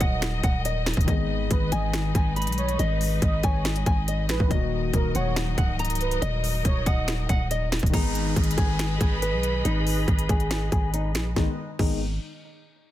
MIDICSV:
0, 0, Header, 1, 8, 480
1, 0, Start_track
1, 0, Key_signature, 5, "minor"
1, 0, Tempo, 428571
1, 1207, Time_signature, 4, 2, 24, 8
1, 14464, End_track
2, 0, Start_track
2, 0, Title_t, "Nylon-string guitar"
2, 0, Program_c, 0, 24
2, 4, Note_on_c, 0, 78, 83
2, 457, Note_off_c, 0, 78, 0
2, 488, Note_on_c, 0, 78, 94
2, 672, Note_off_c, 0, 78, 0
2, 730, Note_on_c, 0, 75, 86
2, 914, Note_off_c, 0, 75, 0
2, 1210, Note_on_c, 0, 75, 94
2, 1660, Note_off_c, 0, 75, 0
2, 1924, Note_on_c, 0, 80, 85
2, 2377, Note_off_c, 0, 80, 0
2, 2413, Note_on_c, 0, 80, 79
2, 2596, Note_off_c, 0, 80, 0
2, 2646, Note_on_c, 0, 83, 78
2, 3098, Note_off_c, 0, 83, 0
2, 3127, Note_on_c, 0, 75, 101
2, 3579, Note_off_c, 0, 75, 0
2, 3851, Note_on_c, 0, 80, 78
2, 4300, Note_off_c, 0, 80, 0
2, 4326, Note_on_c, 0, 80, 82
2, 4511, Note_off_c, 0, 80, 0
2, 4571, Note_on_c, 0, 75, 90
2, 4754, Note_off_c, 0, 75, 0
2, 5045, Note_on_c, 0, 75, 94
2, 5498, Note_off_c, 0, 75, 0
2, 5770, Note_on_c, 0, 78, 86
2, 6220, Note_off_c, 0, 78, 0
2, 6245, Note_on_c, 0, 78, 88
2, 6430, Note_off_c, 0, 78, 0
2, 6489, Note_on_c, 0, 82, 86
2, 6940, Note_off_c, 0, 82, 0
2, 6962, Note_on_c, 0, 75, 105
2, 7416, Note_off_c, 0, 75, 0
2, 7684, Note_on_c, 0, 78, 83
2, 8137, Note_off_c, 0, 78, 0
2, 8167, Note_on_c, 0, 78, 97
2, 8352, Note_off_c, 0, 78, 0
2, 8409, Note_on_c, 0, 75, 87
2, 8593, Note_off_c, 0, 75, 0
2, 8888, Note_on_c, 0, 63, 96
2, 9339, Note_off_c, 0, 63, 0
2, 9601, Note_on_c, 0, 68, 84
2, 10056, Note_off_c, 0, 68, 0
2, 10086, Note_on_c, 0, 68, 78
2, 10271, Note_off_c, 0, 68, 0
2, 10328, Note_on_c, 0, 71, 80
2, 10779, Note_off_c, 0, 71, 0
2, 10808, Note_on_c, 0, 63, 104
2, 11259, Note_off_c, 0, 63, 0
2, 11529, Note_on_c, 0, 68, 78
2, 11980, Note_off_c, 0, 68, 0
2, 12007, Note_on_c, 0, 68, 82
2, 12192, Note_off_c, 0, 68, 0
2, 12250, Note_on_c, 0, 63, 88
2, 12434, Note_off_c, 0, 63, 0
2, 12728, Note_on_c, 0, 63, 90
2, 12862, Note_off_c, 0, 63, 0
2, 13208, Note_on_c, 0, 63, 91
2, 13431, Note_off_c, 0, 63, 0
2, 14464, End_track
3, 0, Start_track
3, 0, Title_t, "Soft synth lead"
3, 0, Program_c, 1, 80
3, 9, Note_on_c, 1, 75, 81
3, 236, Note_off_c, 1, 75, 0
3, 1690, Note_on_c, 1, 71, 79
3, 1917, Note_off_c, 1, 71, 0
3, 1928, Note_on_c, 1, 75, 90
3, 2156, Note_off_c, 1, 75, 0
3, 2888, Note_on_c, 1, 73, 87
3, 3116, Note_off_c, 1, 73, 0
3, 3609, Note_on_c, 1, 75, 91
3, 3837, Note_off_c, 1, 75, 0
3, 3847, Note_on_c, 1, 73, 85
3, 4075, Note_off_c, 1, 73, 0
3, 4808, Note_on_c, 1, 71, 83
3, 5036, Note_off_c, 1, 71, 0
3, 5530, Note_on_c, 1, 70, 94
3, 5757, Note_off_c, 1, 70, 0
3, 5768, Note_on_c, 1, 73, 88
3, 5996, Note_off_c, 1, 73, 0
3, 6728, Note_on_c, 1, 71, 82
3, 6956, Note_off_c, 1, 71, 0
3, 7450, Note_on_c, 1, 73, 85
3, 7677, Note_off_c, 1, 73, 0
3, 7688, Note_on_c, 1, 75, 79
3, 7916, Note_off_c, 1, 75, 0
3, 14464, End_track
4, 0, Start_track
4, 0, Title_t, "String section"
4, 0, Program_c, 2, 48
4, 0, Note_on_c, 2, 54, 84
4, 0, Note_on_c, 2, 63, 79
4, 0, Note_on_c, 2, 70, 81
4, 0, Note_on_c, 2, 75, 92
4, 1163, Note_off_c, 2, 63, 0
4, 1169, Note_off_c, 2, 54, 0
4, 1169, Note_off_c, 2, 70, 0
4, 1207, Note_on_c, 2, 56, 85
4, 1207, Note_on_c, 2, 63, 79
4, 1207, Note_on_c, 2, 71, 78
4, 5003, Note_off_c, 2, 75, 0
4, 5009, Note_off_c, 2, 56, 0
4, 5009, Note_off_c, 2, 63, 0
4, 5009, Note_off_c, 2, 71, 0
4, 5047, Note_on_c, 2, 54, 87
4, 5047, Note_on_c, 2, 63, 80
4, 5047, Note_on_c, 2, 70, 80
4, 5047, Note_on_c, 2, 75, 96
4, 8849, Note_off_c, 2, 54, 0
4, 8849, Note_off_c, 2, 63, 0
4, 8849, Note_off_c, 2, 70, 0
4, 8849, Note_off_c, 2, 75, 0
4, 8888, Note_on_c, 2, 68, 82
4, 8888, Note_on_c, 2, 71, 76
4, 8888, Note_on_c, 2, 75, 76
4, 8888, Note_on_c, 2, 83, 88
4, 12689, Note_off_c, 2, 71, 0
4, 12689, Note_off_c, 2, 75, 0
4, 12690, Note_off_c, 2, 68, 0
4, 12690, Note_off_c, 2, 83, 0
4, 12728, Note_on_c, 2, 56, 73
4, 12728, Note_on_c, 2, 63, 65
4, 12728, Note_on_c, 2, 71, 67
4, 12728, Note_on_c, 2, 75, 82
4, 12951, Note_off_c, 2, 56, 0
4, 12951, Note_off_c, 2, 63, 0
4, 12951, Note_off_c, 2, 71, 0
4, 12951, Note_off_c, 2, 75, 0
4, 14464, End_track
5, 0, Start_track
5, 0, Title_t, "Grand piano"
5, 0, Program_c, 3, 0
5, 0, Control_c, 3, 64, 127
5, 0, Note_on_c, 3, 51, 68
5, 0, Note_on_c, 3, 54, 66
5, 0, Note_on_c, 3, 58, 63
5, 0, Note_on_c, 3, 66, 87
5, 1144, Note_off_c, 3, 51, 0
5, 1156, Note_off_c, 3, 54, 0
5, 1168, Note_off_c, 3, 58, 0
5, 1171, Note_on_c, 3, 51, 70
5, 1180, Note_off_c, 3, 66, 0
5, 1195, Note_on_c, 3, 56, 62
5, 1219, Note_on_c, 3, 59, 67
5, 1222, Control_c, 3, 64, 0
5, 1242, Note_on_c, 3, 68, 73
5, 1399, Control_c, 3, 64, 127
5, 4984, Note_off_c, 3, 51, 0
5, 4996, Note_off_c, 3, 56, 0
5, 5008, Note_off_c, 3, 59, 0
5, 5011, Note_on_c, 3, 51, 69
5, 5020, Note_off_c, 3, 68, 0
5, 5035, Note_on_c, 3, 54, 64
5, 5058, Note_on_c, 3, 58, 60
5, 5060, Control_c, 3, 64, 0
5, 5082, Note_on_c, 3, 66, 84
5, 5230, Control_c, 3, 64, 127
5, 8824, Note_off_c, 3, 51, 0
5, 8836, Note_off_c, 3, 54, 0
5, 8845, Note_on_c, 3, 51, 75
5, 8848, Note_off_c, 3, 58, 0
5, 8860, Note_off_c, 3, 66, 0
5, 8869, Note_on_c, 3, 56, 62
5, 8893, Note_on_c, 3, 59, 62
5, 8902, Control_c, 3, 64, 0
5, 8917, Note_on_c, 3, 68, 77
5, 9120, Control_c, 3, 64, 127
5, 12662, Note_off_c, 3, 51, 0
5, 12674, Note_off_c, 3, 56, 0
5, 12685, Note_off_c, 3, 59, 0
5, 12697, Note_off_c, 3, 68, 0
5, 12728, Note_on_c, 3, 51, 87
5, 12728, Note_on_c, 3, 56, 82
5, 12728, Note_on_c, 3, 59, 80
5, 12728, Note_on_c, 3, 68, 99
5, 12743, Control_c, 3, 64, 0
5, 12862, Note_off_c, 3, 51, 0
5, 12862, Note_off_c, 3, 56, 0
5, 12862, Note_off_c, 3, 59, 0
5, 12862, Note_off_c, 3, 68, 0
5, 13208, Note_on_c, 3, 51, 83
5, 13208, Note_on_c, 3, 56, 78
5, 13208, Note_on_c, 3, 59, 77
5, 13208, Note_on_c, 3, 68, 95
5, 13431, Note_off_c, 3, 51, 0
5, 13431, Note_off_c, 3, 56, 0
5, 13431, Note_off_c, 3, 59, 0
5, 13431, Note_off_c, 3, 68, 0
5, 14464, End_track
6, 0, Start_track
6, 0, Title_t, "808-style bass"
6, 0, Program_c, 4, 38
6, 8, Note_on_c, 4, 27, 108
6, 468, Note_off_c, 4, 27, 0
6, 487, Note_on_c, 4, 27, 102
6, 1064, Note_off_c, 4, 27, 0
6, 1088, Note_on_c, 4, 27, 107
6, 1201, Note_off_c, 4, 27, 0
6, 1207, Note_on_c, 4, 32, 114
6, 1668, Note_off_c, 4, 32, 0
6, 1688, Note_on_c, 4, 32, 105
6, 1918, Note_off_c, 4, 32, 0
6, 1927, Note_on_c, 4, 32, 105
6, 2388, Note_off_c, 4, 32, 0
6, 2407, Note_on_c, 4, 32, 107
6, 2768, Note_on_c, 4, 35, 100
6, 2785, Note_off_c, 4, 32, 0
6, 3110, Note_off_c, 4, 35, 0
6, 3128, Note_on_c, 4, 32, 115
6, 3588, Note_off_c, 4, 32, 0
6, 3608, Note_on_c, 4, 32, 109
6, 3838, Note_off_c, 4, 32, 0
6, 3848, Note_on_c, 4, 32, 107
6, 4309, Note_off_c, 4, 32, 0
6, 4328, Note_on_c, 4, 32, 103
6, 4808, Note_on_c, 4, 34, 100
6, 4825, Note_off_c, 4, 32, 0
6, 4922, Note_off_c, 4, 34, 0
6, 4928, Note_on_c, 4, 32, 101
6, 5043, Note_off_c, 4, 32, 0
6, 5048, Note_on_c, 4, 27, 111
6, 5509, Note_off_c, 4, 27, 0
6, 5528, Note_on_c, 4, 27, 106
6, 5758, Note_off_c, 4, 27, 0
6, 5768, Note_on_c, 4, 27, 106
6, 6229, Note_off_c, 4, 27, 0
6, 6247, Note_on_c, 4, 25, 101
6, 6939, Note_off_c, 4, 25, 0
6, 6968, Note_on_c, 4, 27, 113
6, 7429, Note_off_c, 4, 27, 0
6, 7448, Note_on_c, 4, 27, 107
6, 7678, Note_off_c, 4, 27, 0
6, 7688, Note_on_c, 4, 27, 109
6, 8149, Note_off_c, 4, 27, 0
6, 8168, Note_on_c, 4, 27, 103
6, 8744, Note_off_c, 4, 27, 0
6, 8768, Note_on_c, 4, 27, 104
6, 8881, Note_off_c, 4, 27, 0
6, 8888, Note_on_c, 4, 32, 113
6, 9348, Note_off_c, 4, 32, 0
6, 9368, Note_on_c, 4, 32, 108
6, 9598, Note_off_c, 4, 32, 0
6, 9608, Note_on_c, 4, 32, 106
6, 10068, Note_off_c, 4, 32, 0
6, 10087, Note_on_c, 4, 32, 102
6, 10448, Note_on_c, 4, 35, 100
6, 10465, Note_off_c, 4, 32, 0
6, 10790, Note_off_c, 4, 35, 0
6, 10808, Note_on_c, 4, 32, 109
6, 11269, Note_off_c, 4, 32, 0
6, 11288, Note_on_c, 4, 32, 108
6, 11518, Note_off_c, 4, 32, 0
6, 11528, Note_on_c, 4, 32, 105
6, 11989, Note_off_c, 4, 32, 0
6, 12008, Note_on_c, 4, 32, 108
6, 12488, Note_on_c, 4, 34, 98
6, 12505, Note_off_c, 4, 32, 0
6, 12716, Note_off_c, 4, 34, 0
6, 12728, Note_on_c, 4, 32, 109
6, 12862, Note_off_c, 4, 32, 0
6, 13208, Note_on_c, 4, 32, 107
6, 13654, Note_off_c, 4, 32, 0
6, 14464, End_track
7, 0, Start_track
7, 0, Title_t, "Downlifter"
7, 0, Program_c, 5, 103
7, 8888, Note_on_c, 5, 60, 83
7, 12728, Note_off_c, 5, 60, 0
7, 14464, End_track
8, 0, Start_track
8, 0, Title_t, "Drums"
8, 6, Note_on_c, 9, 42, 69
8, 7, Note_on_c, 9, 36, 98
8, 118, Note_off_c, 9, 42, 0
8, 119, Note_off_c, 9, 36, 0
8, 247, Note_on_c, 9, 38, 111
8, 249, Note_on_c, 9, 42, 81
8, 252, Note_on_c, 9, 26, 93
8, 359, Note_off_c, 9, 38, 0
8, 361, Note_off_c, 9, 42, 0
8, 364, Note_off_c, 9, 26, 0
8, 487, Note_on_c, 9, 36, 106
8, 487, Note_on_c, 9, 42, 73
8, 599, Note_off_c, 9, 36, 0
8, 599, Note_off_c, 9, 42, 0
8, 729, Note_on_c, 9, 42, 87
8, 841, Note_off_c, 9, 42, 0
8, 968, Note_on_c, 9, 38, 104
8, 968, Note_on_c, 9, 42, 63
8, 972, Note_on_c, 9, 26, 82
8, 1047, Note_off_c, 9, 42, 0
8, 1047, Note_on_c, 9, 42, 65
8, 1080, Note_off_c, 9, 38, 0
8, 1084, Note_off_c, 9, 26, 0
8, 1088, Note_on_c, 9, 36, 105
8, 1127, Note_off_c, 9, 42, 0
8, 1127, Note_on_c, 9, 42, 64
8, 1200, Note_off_c, 9, 36, 0
8, 1207, Note_on_c, 9, 36, 125
8, 1208, Note_off_c, 9, 42, 0
8, 1208, Note_on_c, 9, 42, 71
8, 1319, Note_off_c, 9, 36, 0
8, 1320, Note_off_c, 9, 42, 0
8, 1687, Note_on_c, 9, 36, 86
8, 1687, Note_on_c, 9, 42, 79
8, 1799, Note_off_c, 9, 36, 0
8, 1799, Note_off_c, 9, 42, 0
8, 1926, Note_on_c, 9, 42, 71
8, 2038, Note_off_c, 9, 42, 0
8, 2167, Note_on_c, 9, 38, 113
8, 2169, Note_on_c, 9, 42, 81
8, 2172, Note_on_c, 9, 26, 88
8, 2279, Note_off_c, 9, 38, 0
8, 2281, Note_off_c, 9, 42, 0
8, 2284, Note_off_c, 9, 26, 0
8, 2407, Note_on_c, 9, 36, 108
8, 2408, Note_on_c, 9, 42, 79
8, 2519, Note_off_c, 9, 36, 0
8, 2520, Note_off_c, 9, 42, 0
8, 2648, Note_on_c, 9, 42, 53
8, 2708, Note_off_c, 9, 42, 0
8, 2708, Note_on_c, 9, 42, 65
8, 2768, Note_off_c, 9, 42, 0
8, 2768, Note_on_c, 9, 42, 80
8, 2828, Note_off_c, 9, 42, 0
8, 2828, Note_on_c, 9, 42, 89
8, 2888, Note_off_c, 9, 42, 0
8, 2888, Note_on_c, 9, 42, 62
8, 3000, Note_off_c, 9, 42, 0
8, 3008, Note_on_c, 9, 42, 61
8, 3120, Note_off_c, 9, 42, 0
8, 3128, Note_on_c, 9, 42, 69
8, 3240, Note_off_c, 9, 42, 0
8, 3370, Note_on_c, 9, 46, 76
8, 3482, Note_off_c, 9, 46, 0
8, 3607, Note_on_c, 9, 42, 81
8, 3608, Note_on_c, 9, 36, 85
8, 3719, Note_off_c, 9, 42, 0
8, 3720, Note_off_c, 9, 36, 0
8, 3846, Note_on_c, 9, 42, 68
8, 3848, Note_on_c, 9, 36, 94
8, 3958, Note_off_c, 9, 42, 0
8, 3960, Note_off_c, 9, 36, 0
8, 4088, Note_on_c, 9, 38, 111
8, 4088, Note_on_c, 9, 42, 67
8, 4092, Note_on_c, 9, 26, 87
8, 4200, Note_off_c, 9, 38, 0
8, 4200, Note_off_c, 9, 42, 0
8, 4204, Note_off_c, 9, 26, 0
8, 4208, Note_on_c, 9, 42, 68
8, 4320, Note_off_c, 9, 42, 0
8, 4327, Note_on_c, 9, 42, 74
8, 4328, Note_on_c, 9, 36, 110
8, 4439, Note_off_c, 9, 42, 0
8, 4440, Note_off_c, 9, 36, 0
8, 4569, Note_on_c, 9, 42, 86
8, 4681, Note_off_c, 9, 42, 0
8, 4806, Note_on_c, 9, 42, 75
8, 4807, Note_on_c, 9, 38, 105
8, 4812, Note_on_c, 9, 26, 82
8, 4918, Note_off_c, 9, 42, 0
8, 4919, Note_off_c, 9, 38, 0
8, 4924, Note_off_c, 9, 26, 0
8, 4928, Note_on_c, 9, 36, 104
8, 5040, Note_off_c, 9, 36, 0
8, 5048, Note_on_c, 9, 36, 123
8, 5048, Note_on_c, 9, 42, 72
8, 5160, Note_off_c, 9, 36, 0
8, 5160, Note_off_c, 9, 42, 0
8, 5527, Note_on_c, 9, 42, 77
8, 5528, Note_on_c, 9, 36, 87
8, 5639, Note_off_c, 9, 42, 0
8, 5640, Note_off_c, 9, 36, 0
8, 5767, Note_on_c, 9, 42, 68
8, 5879, Note_off_c, 9, 42, 0
8, 6008, Note_on_c, 9, 38, 116
8, 6010, Note_on_c, 9, 42, 81
8, 6012, Note_on_c, 9, 26, 92
8, 6120, Note_off_c, 9, 38, 0
8, 6122, Note_off_c, 9, 42, 0
8, 6124, Note_off_c, 9, 26, 0
8, 6248, Note_on_c, 9, 36, 108
8, 6248, Note_on_c, 9, 42, 77
8, 6360, Note_off_c, 9, 36, 0
8, 6360, Note_off_c, 9, 42, 0
8, 6488, Note_on_c, 9, 42, 54
8, 6548, Note_off_c, 9, 42, 0
8, 6548, Note_on_c, 9, 42, 65
8, 6608, Note_off_c, 9, 42, 0
8, 6608, Note_on_c, 9, 42, 78
8, 6668, Note_off_c, 9, 42, 0
8, 6668, Note_on_c, 9, 42, 86
8, 6728, Note_off_c, 9, 42, 0
8, 6728, Note_on_c, 9, 42, 63
8, 6840, Note_off_c, 9, 42, 0
8, 6848, Note_on_c, 9, 42, 62
8, 6960, Note_off_c, 9, 42, 0
8, 6969, Note_on_c, 9, 42, 72
8, 7081, Note_off_c, 9, 42, 0
8, 7211, Note_on_c, 9, 46, 73
8, 7323, Note_off_c, 9, 46, 0
8, 7448, Note_on_c, 9, 36, 90
8, 7448, Note_on_c, 9, 42, 78
8, 7560, Note_off_c, 9, 36, 0
8, 7560, Note_off_c, 9, 42, 0
8, 7687, Note_on_c, 9, 42, 68
8, 7688, Note_on_c, 9, 36, 101
8, 7799, Note_off_c, 9, 42, 0
8, 7800, Note_off_c, 9, 36, 0
8, 7928, Note_on_c, 9, 38, 110
8, 7930, Note_on_c, 9, 42, 82
8, 7933, Note_on_c, 9, 26, 89
8, 8040, Note_off_c, 9, 38, 0
8, 8042, Note_off_c, 9, 42, 0
8, 8045, Note_off_c, 9, 26, 0
8, 8168, Note_on_c, 9, 36, 104
8, 8168, Note_on_c, 9, 42, 74
8, 8280, Note_off_c, 9, 36, 0
8, 8280, Note_off_c, 9, 42, 0
8, 8410, Note_on_c, 9, 42, 85
8, 8522, Note_off_c, 9, 42, 0
8, 8648, Note_on_c, 9, 38, 104
8, 8648, Note_on_c, 9, 42, 65
8, 8653, Note_on_c, 9, 26, 80
8, 8728, Note_off_c, 9, 42, 0
8, 8728, Note_on_c, 9, 42, 62
8, 8760, Note_off_c, 9, 38, 0
8, 8765, Note_off_c, 9, 26, 0
8, 8768, Note_on_c, 9, 36, 105
8, 8808, Note_off_c, 9, 42, 0
8, 8808, Note_on_c, 9, 42, 62
8, 8880, Note_off_c, 9, 36, 0
8, 8888, Note_off_c, 9, 42, 0
8, 8888, Note_on_c, 9, 36, 116
8, 8888, Note_on_c, 9, 42, 69
8, 8888, Note_on_c, 9, 49, 93
8, 9000, Note_off_c, 9, 36, 0
8, 9000, Note_off_c, 9, 42, 0
8, 9000, Note_off_c, 9, 49, 0
8, 9130, Note_on_c, 9, 42, 71
8, 9242, Note_off_c, 9, 42, 0
8, 9368, Note_on_c, 9, 36, 83
8, 9368, Note_on_c, 9, 42, 59
8, 9448, Note_off_c, 9, 42, 0
8, 9448, Note_on_c, 9, 42, 62
8, 9480, Note_off_c, 9, 36, 0
8, 9528, Note_off_c, 9, 42, 0
8, 9528, Note_on_c, 9, 42, 60
8, 9607, Note_off_c, 9, 42, 0
8, 9607, Note_on_c, 9, 42, 66
8, 9608, Note_on_c, 9, 36, 98
8, 9719, Note_off_c, 9, 42, 0
8, 9720, Note_off_c, 9, 36, 0
8, 9847, Note_on_c, 9, 38, 111
8, 9849, Note_on_c, 9, 42, 86
8, 9852, Note_on_c, 9, 26, 86
8, 9959, Note_off_c, 9, 38, 0
8, 9961, Note_off_c, 9, 42, 0
8, 9964, Note_off_c, 9, 26, 0
8, 10087, Note_on_c, 9, 42, 77
8, 10088, Note_on_c, 9, 36, 104
8, 10199, Note_off_c, 9, 42, 0
8, 10200, Note_off_c, 9, 36, 0
8, 10330, Note_on_c, 9, 42, 90
8, 10442, Note_off_c, 9, 42, 0
8, 10566, Note_on_c, 9, 42, 72
8, 10678, Note_off_c, 9, 42, 0
8, 10809, Note_on_c, 9, 42, 70
8, 10921, Note_off_c, 9, 42, 0
8, 11051, Note_on_c, 9, 46, 74
8, 11163, Note_off_c, 9, 46, 0
8, 11288, Note_on_c, 9, 36, 85
8, 11288, Note_on_c, 9, 42, 44
8, 11400, Note_off_c, 9, 36, 0
8, 11400, Note_off_c, 9, 42, 0
8, 11408, Note_on_c, 9, 42, 75
8, 11520, Note_off_c, 9, 42, 0
8, 11528, Note_on_c, 9, 36, 97
8, 11528, Note_on_c, 9, 42, 69
8, 11640, Note_off_c, 9, 36, 0
8, 11640, Note_off_c, 9, 42, 0
8, 11648, Note_on_c, 9, 42, 45
8, 11760, Note_off_c, 9, 42, 0
8, 11768, Note_on_c, 9, 38, 112
8, 11770, Note_on_c, 9, 42, 86
8, 11773, Note_on_c, 9, 26, 85
8, 11880, Note_off_c, 9, 38, 0
8, 11882, Note_off_c, 9, 42, 0
8, 11885, Note_off_c, 9, 26, 0
8, 12008, Note_on_c, 9, 36, 106
8, 12008, Note_on_c, 9, 42, 72
8, 12120, Note_off_c, 9, 36, 0
8, 12120, Note_off_c, 9, 42, 0
8, 12250, Note_on_c, 9, 42, 92
8, 12362, Note_off_c, 9, 42, 0
8, 12486, Note_on_c, 9, 42, 80
8, 12488, Note_on_c, 9, 38, 102
8, 12493, Note_on_c, 9, 26, 80
8, 12598, Note_off_c, 9, 42, 0
8, 12600, Note_off_c, 9, 38, 0
8, 12605, Note_off_c, 9, 26, 0
8, 12728, Note_on_c, 9, 36, 109
8, 12728, Note_on_c, 9, 38, 89
8, 12840, Note_off_c, 9, 36, 0
8, 12840, Note_off_c, 9, 38, 0
8, 13208, Note_on_c, 9, 36, 109
8, 13208, Note_on_c, 9, 49, 90
8, 13320, Note_off_c, 9, 36, 0
8, 13320, Note_off_c, 9, 49, 0
8, 14464, End_track
0, 0, End_of_file